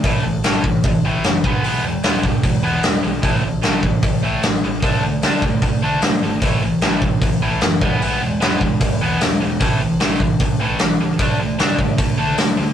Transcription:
<<
  \new Staff \with { instrumentName = "Distorted electric guitar" } { \clef bass \time 4/4 \key e \mixolydian \tempo 4 = 150 <a, e a>8 <a, e>8 <a, e a>8 <a, e>8 <a, e>8 <a, e a>8 <a, e>8 <e gis b>8 | <e gis b>8 <e gis>8 <e gis b>8 <e gis>8 <e gis>8 <e gis b>8 <e gis>8 <e gis>8 | <a, e a>8 <a, e>8 <a, e a>8 <a, e>8 <a, e>8 <a, e a>8 <a, e>8 <a, e>8 | <d a d'>8 <d a>8 <d a d'>8 <d a>8 <d a>8 <d a d'>8 <d a>8 <d a>8 |
<a, e a>8 <a, e>8 <a, e a>8 <a, e>8 <a, e>8 <a, e a>8 <a, e>8 <e gis b>8 | <e gis b>8 <e gis>8 <e gis b>8 <e gis>8 <e gis>8 <e gis b>8 <e gis>8 <e gis>8 | <a, e a>8 <a, e>8 <a, e a>8 <a, e>8 <a, e>8 <a, e a>8 <a, e>8 <a, e>8 | <d a d'>8 <d a>8 <d a d'>8 <d a>8 <d a>8 <d a d'>8 <d a>8 <d a>8 | }
  \new Staff \with { instrumentName = "Picked electric bass" } { \clef bass \time 4/4 \key e \mixolydian a,,8 a,,8 a,,8 a,,8 a,,8 a,,8 fis,,8 e,,8 | b,,8 e,,8 e,,8 e,,8 e,,8 e,8 e,,8 b,,8 | a,,8 a,,8 a,,8 a,,8 a,,8 a,,8 a,,8 a,,8 | d,8 d,8 d,8 d,8 d,8 d8 d,8 gis,,8 |
a,,8 a,,8 a,,8 a,,8 a,,8 a,,8 fis,,8 e,,8 | b,,8 e,,8 e,,8 e,,8 e,,8 e,8 e,,8 e,,8 | a,,8 a,,8 a,,8 a,,8 a,,8 a,,8 a,,8 cis,8 | d,8 d,8 d,8 d,8 d,8 d8 d,8 d,8 | }
  \new DrumStaff \with { instrumentName = "Drums" } \drummode { \time 4/4 <hho bd>4 <hho sn>8 bd8 <hho bd>4 <hho sn>8 bd8 | hho4 <hho sn>8 bd8 <hho bd>4 <hho sn>4 | <hho bd>4 <hho sn>8 bd8 <hho bd>4 <hho sn>4 | <hho bd>4 <hho sn>8 bd8 <hho bd>4 <hho sn>4 |
<hho bd>4 <hho sn>8 bd8 <hho bd>4 <hho sn>8 bd8 | hho4 <hho sn>8 bd8 <hho bd>4 <hho sn>4 | <hho bd>4 <hho sn>8 bd8 <hho bd>4 <hho sn>4 | <hho bd>4 <hho sn>8 bd8 <hho bd>4 <hho sn>4 | }
>>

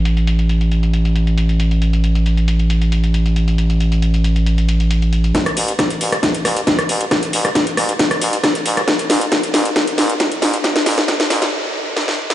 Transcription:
<<
  \new Staff \with { instrumentName = "FM bass" } { \clef bass \time 4/4 \key c \mixolydian \tempo 4 = 136 a,,1~ | a,,1~ | a,,1 | r8 a,,8 r8 a,,8 r8 a,,8 r8 a,,8 |
r8 a,,8 r8 a,,8 r8 a,,8 r8 a,,8 | r8 a,,8 r8 a,,8 r8 a,,8 r8 a,,8 | r8 a,,8 r8 a,,8 r2 | }
  \new DrumStaff \with { instrumentName = "Drums" } \drummode { \time 4/4 hh16 hh16 hh16 hh16 hh16 hh16 hh16 hh16 hh16 hh16 hh16 hh16 hh16 hh16 hh16 hh16 | hh16 hh16 hh16 hh16 hh16 hh16 hh16 hh16 hh16 hh16 hh16 hh16 hh16 hh16 hh16 hh16 | hh16 hh16 hh16 hh16 hh16 hh16 hh16 hh16 hh16 hh16 hh16 hh16 hh16 hh16 hh16 hh16 | <hh bd sn>16 <hh ss>16 hho16 hh16 <hh bd ss sn>16 hh16 hho16 <hh ss>16 <hh bd sn>16 hh16 <hho ss>16 hh16 <hh bd sn>16 <hh ss>16 hho16 hh16 |
<hh bd ss sn>16 hh16 hho16 <hh ss>16 <hh bd sn>16 hh16 <hho ss>16 hh16 <hh bd sn>16 <hh ss>16 hho16 hh16 <hh bd ss sn>16 hh16 hho16 <hh ss>16 | <hh bd sn>16 hh16 <hho sn>16 hh16 <hh bd sn>16 hh16 <hho sn>16 hh16 <hh bd sn>16 hh16 <hho sn>16 hh16 <hh bd sn>16 hh16 <hho sn>16 hh16 | <hh bd sn>16 <hh sn>16 <hho sn>16 <hh sn>16 <hh bd sn>16 <hh sn>16 <hho sn>16 <hh sn>16 r4 sn16 sn8 sn16 | }
>>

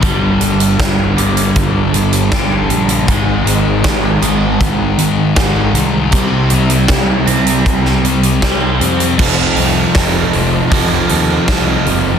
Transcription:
<<
  \new Staff \with { instrumentName = "Overdriven electric guitar" } { \time 4/4 \key g \minor \tempo 4 = 79 <g, d g bes d' bes'>1 | <aes, ees aes c' ees' aes'>1 | <c g bes e' g'>1 | <f c' ees' a'>4 <f c' ees' a'>4 <f c' ees' a'>8 <c' ees' a'>8 <f c' ees' a'>4 | }
  \new Staff \with { instrumentName = "Distorted electric guitar" } { \clef bass \time 4/4 \key g \minor <g, d g>8 <d g>8 <g, d g>8 <d g>8 <g, d g>8 <d g>8 <g, d g>8 <d g>8 | <aes, ees aes>8 <ees aes>8 <aes, ees aes>8 <ees aes>8 <aes, ees aes>8 <ees aes>8 <aes, ees aes>8 <ees aes>8 | <c g c'>8 <g c'>8 <c g c'>8 <g c'>8 <c g c'>8 <g c'>8 <c g c'>8 <g c'>8 | <f, c f>8 <c f>8 <f, c f>8 <c f>8 <f, c f>8 <c f>8 <f, c f>8 <c f>8 | }
  \new Staff \with { instrumentName = "Overdriven electric guitar" } { \clef bass \time 4/4 \key g \minor <g, d g>4. <g, d g>4. <g, d g>4 | <aes, ees aes>4. <aes, ees aes>4. <aes, ees aes>4 | <c g c'>4. <c g c'>4. <c g c'>4 | <f, c f>2 <f, c f>2 | }
  \new Staff \with { instrumentName = "Picked electric bass" } { \clef bass \time 4/4 \key g \minor g,,8 g,,8 g,,8 g,,8 g,,8 g,,8 r8 bes,,8 | aes,,8 aes,,8 aes,,8 aes,,8 aes,,8 aes,,8 aes,,8 c,8 | c,8 c,8 c,8 c,8 r8 c,8 r8 f,8 | f,,8 c,8 f,,8 f,,8 f,,8 ees,8 c,8 ges,,8 | }
  \new DrumStaff \with { instrumentName = "Drums" } \drummode { \time 4/4 <hh bd>8 hh16 hh16 <hh bd sn>8 hh16 hh16 <hh bd>8 hh16 hh16 <hh bd sn>8 hh16 hh16 | <hh bd>8 hh8 <hh bd sn>8 hh8 <hh bd>8 hh8 <hh bd sn>8 hh8 | <hh bd>8 hh16 hh16 <hh bd sn>8 hh16 hh16 <hh bd>16 sn16 hh16 hh16 <hh bd sn>8 hh16 hh16 | <cymc bd>8 hho8 <hho bd sn>8 hho8 <hho bd>8 hho8 <hho bd sn>8 hho8 | }
>>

